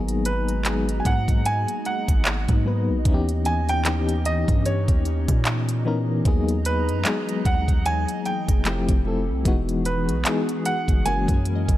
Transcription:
Already playing: G#1 F#3 G#3 A#3 B3 D#4 F#4 G#4 D#5 A#5
0.09 closed hi-hat
0.25 B4, closed hi-hat
0.48 closed hi-hat
0.65 F#3 G#3 B3 D#4 G#4, clap, closed hi-hat
0.89 closed hi-hat
1.00 G#5
1.05 G#2 F#5, kick, closed hi-hat
1.28 kick, closed hi-hat
1.45 G#5, closed hi-hat
1.68 closed hi-hat
1.85 F#5, closed hi-hat
2.08 G#1, kick, closed hi-hat
2.25 clap, closed hi-hat
2.49 G#2, kick, closed hi-hat
2.65 F#3 A#3 B3 D#4 B4
2.89 B1
3.05 D#2 E3 B3 C#4 D#4 E4 G4, kick, closed hi-hat
3.14 G4
3.29 closed hi-hat
3.45 D#5 G#5, closed hi-hat
3.69 G5, closed hi-hat
3.85 E3 B3 C#4 D#4 G4, clap, closed hi-hat
4.09 closed hi-hat
4.25 D#5, closed hi-hat
4.48 G2, kick, closed hi-hat
4.66 C#5, closed hi-hat
4.88 D#2, kick, closed hi-hat
5.05 closed hi-hat
5.28 A#2, kick, closed hi-hat
5.45 clap, closed hi-hat
5.69 closed hi-hat
5.85 E3 B3 C#4 D#4 A#4
6.25 D#2 F#3 A#3 B3 D#4 G#4 D#5 A#5, kick, closed hi-hat
6.49 closed hi-hat
6.65 B4, closed hi-hat
6.89 F#2, closed hi-hat
7.05 F#3 G#3 B3 D#4 G#4, clap, closed hi-hat
7.29 closed hi-hat
7.45 D#2 F#5, kick, closed hi-hat
7.68 kick, closed hi-hat
7.86 C#5 G#5, closed hi-hat
8.08 closed hi-hat
8.25 G5, closed hi-hat
8.48 F1, kick, closed hi-hat
8.65 F3 A3 C4 E4 G4 A4, clap, closed hi-hat
8.89 F1, kick, closed hi-hat
9.05 F3 A3 C4 E4 A4
9.29 C2
9.45 E1 E3 G#3 B3 D#4 F#4 G#4, kick, closed hi-hat
9.69 closed hi-hat
9.85 B4, closed hi-hat
10.09 B1, closed hi-hat
10.25 E3 G#3 B3 D#4 G#4, clap, closed hi-hat
10.49 closed hi-hat
10.65 F#5, closed hi-hat
10.88 F#1, kick, closed hi-hat
11.05 E3 F#3 G#3 A#3 C#4 E4 F#4 A#4 G#5, closed hi-hat
11.28 F#2, kick, closed hi-hat
11.34 C#5
11.45 closed hi-hat
11.55 D#5
11.69 F#1, kick, closed hi-hat

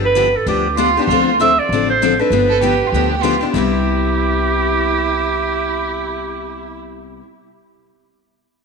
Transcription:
Already playing: G1
0.05 B4
0.15 D3 F3 B3 D4 G4
0.37 A4
0.46 D2 D3 F3 B3 D4 G4
0.77 D3 F3 B3 D4 F4 G4
0.97 B3 D4 G4
1.01 G4
1.07 D2 D3 F3 C4 F4
1.12 D4 A4
1.40 D3 F3 C4 D4 A4 E5
1.59 D5
1.69 A1 D3 C4
1.73 F3 D4 A4
1.90 C5
2.02 D3 F3 C4 D4 A4
2.19 C4 D4 A4 B4
2.30 G1 D3 F3 B3 D4 G4
2.50 A4
2.62 D3 F3 B3 D4 G4
2.87 F4
2.92 D2 D3 F3 B3 D4 G4
3.16 G4
3.23 D3 F3 B3 D4 F4 G4
3.41 B3 D4 G4
3.54 C2 C3 G3 B3 E4 G4
3.58 G4

